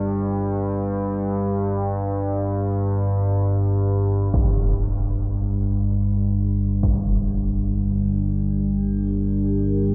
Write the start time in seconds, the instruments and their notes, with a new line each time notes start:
Already playing: synth drone G1 G2
4.34 synth drone G1 G2, ambient pad G3, impact
4.93 ambient pad D4
6.83 impact
7.76 ambient pad G4
8.45 ambient pad A#4